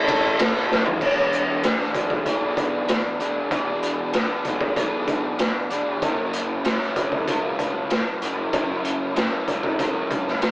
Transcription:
0.00 0.53 A1 medium
0.08 0.39 E4 medium
0.08 0.39 A4 medium
0.08 0.41 C#5 medium
0.08 kick medium
0.08 ride medium
0.39 0.99 C#4 medium
0.39 1.00 E4 medium
0.39 1.00 A4 medium
0.39 1.01 C#5 medium
0.39 snare loud
0.39 ride loud
0.56 snare soft
0.70 0.84 F#1 medium
0.70 snare medium
0.85 0.99 E1 medium
0.85 floor tom loud
1.01 1.78 E1 loud
1.01 2.25 E3 medium
1.01 1.63 B3 medium
1.01 1.64 D4 medium
1.01 1.64 G#4 medium
1.01 1.66 D5 medium
1.01 kick loud
1.01 crash medium
1.33 closed hi-hat medium
1.63 2.25 B3 medium
1.63 2.26 D4 medium
1.63 2.26 G#4 medium
1.63 2.27 D5 medium
1.63 snare loud
1.63 closed hi-hat medium
1.80 snare soft
1.94 2.97 B1 medium
1.94 kick medium
1.94 closed hi-hat medium
2.10 kick medium
2.26 3.51 E3 medium
2.26 3.51 B3 medium
2.26 3.22 D4 medium
2.26 3.20 G#4 medium
2.26 3.19 D5 loud
2.26 kick medium
2.26 closed hi-hat medium
2.57 kick medium
2.57 closed hi-hat medium
2.88 snare loud
2.88 closed hi-hat medium
3.20 3.46 E1 medium
3.20 3.52 D4 medium
3.20 3.52 G#4 medium
3.20 3.53 D5 medium
3.20 closed hi-hat medium
3.51 4.28 E1 loud
3.51 4.76 E3 medium
3.51 4.13 B3 medium
3.51 4.14 D4 medium
3.51 4.15 G#4 loud
3.51 4.16 D5 loud
3.51 kick loud
3.51 closed hi-hat medium
3.83 closed hi-hat medium
4.13 4.76 B3 medium
4.13 4.77 D4 medium
4.13 4.78 G#4 medium
4.13 4.78 D5 medium
4.13 snare medium
4.13 closed hi-hat medium
4.45 5.48 B1 medium
4.45 kick medium
4.45 closed hi-hat medium
4.61 kick medium
4.76 6.02 E3 medium
4.76 6.01 B3 medium
4.76 5.73 D4 medium
4.76 5.71 G#4 medium
4.76 5.70 D5 medium
4.76 kick medium
4.76 closed hi-hat medium
5.08 kick medium
5.08 closed hi-hat medium
5.39 snare loud
5.39 closed hi-hat medium
5.70 5.97 E1 medium
5.70 6.02 D4 medium
5.70 6.01 G#4 medium
5.70 6.01 D5 medium
5.70 closed hi-hat medium
6.02 6.79 F#1 loud
6.02 7.27 F#3 medium
6.02 6.64 C#4 medium
6.02 6.65 E4 medium
6.02 6.66 A#4 loud
6.02 6.67 C#5 loud
6.02 kick loud
6.02 closed hi-hat medium
6.33 closed hi-hat medium
6.64 7.28 C#4 medium
6.64 7.29 E4 medium
6.64 7.29 A#4 medium
6.64 7.29 C#5 medium
6.64 snare loud
6.64 closed hi-hat medium
6.81 snare soft
6.96 7.99 C#2 medium
6.96 kick medium
6.96 closed hi-hat medium
7.12 kick medium
7.27 8.52 F#3 loud
7.27 8.52 C#4 loud
7.27 8.25 E4 medium
7.27 8.23 A#4 medium
7.27 8.21 C#5 loud
7.27 kick medium
7.27 closed hi-hat medium
7.59 kick medium
7.59 closed hi-hat medium
7.90 snare loud
7.90 closed hi-hat medium
8.22 8.48 F#1 medium
8.22 8.54 E4 medium
8.22 8.54 A#4 medium
8.22 8.54 C#5 medium
8.22 closed hi-hat medium
8.53 9.30 F#1 loud
8.53 9.48 F#3 medium
8.53 9.15 C#4 medium
8.53 9.17 E4 medium
8.53 9.17 A#4 medium
8.53 9.18 C#5 loud
8.53 kick loud
8.53 closed hi-hat medium
8.84 closed hi-hat medium
9.16 9.79 C#4 medium
9.16 9.80 E4 medium
9.16 9.80 A#4 medium
9.16 9.81 C#5 medium
9.16 snare medium
9.16 closed hi-hat medium
9.48 10.51 C#2 medium
9.48 kick medium
9.48 closed hi-hat medium
9.63 kick medium
9.79 10.51 F#3 medium
9.79 10.51 C#4 medium
9.79 10.51 E4 medium
9.79 10.51 A#4 medium
9.79 10.51 C#5 medium
9.79 kick medium
9.79 closed hi-hat medium
10.10 kick medium
10.10 closed hi-hat medium
10.27 snare soft
10.42 snare loud
10.42 closed hi-hat medium

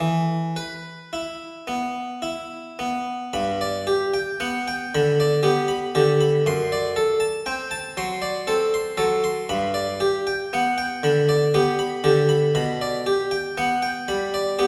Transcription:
0.00 0.55 E3 soft
0.56 1.16 B4 soft
1.13 1.72 E4 soft
1.67 2.27 B3 soft
2.22 2.81 E4 soft
2.79 3.34 B3 soft
3.33 3.86 G2 medium
3.33 3.62 B5 medium
3.61 3.89 D5 soft
3.87 4.15 G4 soft
4.14 4.41 G5 medium
4.40 4.95 B3 soft
4.40 4.66 F#5 soft
4.68 4.94 G5 soft
4.95 5.47 D3 soft
4.95 5.20 B5 soft
5.20 5.46 D5 soft
5.43 5.97 B3 soft
5.43 5.70 G4 soft
5.68 5.96 B5 soft
5.95 6.46 D3 soft
5.95 6.22 G4 soft
6.21 6.46 B5 soft
6.46 6.95 F#2 medium
6.46 6.73 C6 medium
6.72 6.98 D5 soft
6.96 7.22 A4 soft
7.20 7.47 A5 soft
7.46 8.00 C4 soft
7.46 7.72 G5 soft
7.71 7.98 A5 soft
7.97 8.50 F#3 soft
7.97 8.24 C6 soft
8.22 8.49 D5 soft
8.47 9.01 C4 soft
8.47 8.74 A4 soft
8.74 9.00 C6 soft
8.97 9.49 F#3 soft
8.97 9.25 A4 soft
9.24 9.50 C6 soft
9.49 9.99 G2 medium
9.49 9.76 B5 medium
9.74 10.02 D5 soft
10.00 10.27 G4 soft
10.27 10.53 G5 soft
10.53 11.06 B3 soft
10.53 10.78 F#5 soft
10.78 11.04 G5 soft
11.03 11.56 D3 soft
11.03 11.30 B5 soft
11.29 11.55 D5 soft
11.54 12.07 B3 soft
11.54 11.80 G4 soft
11.79 12.05 B5 soft
12.04 12.55 D3 soft
12.04 12.31 G4 soft
12.29 12.54 B5 medium
12.55 13.04 B2 medium
12.55 12.82 B5 medium
12.81 13.07 D5 soft
13.06 13.32 G4 soft
13.31 13.58 G5 medium
13.58 14.10 B3 soft
13.58 13.82 F#5 soft
13.82 14.09 G5 soft
14.08 14.62 G3 soft
14.08 14.34 B5 soft
14.34 14.60 D5 soft
14.59 14.67 B3 soft
14.59 14.67 G4 soft

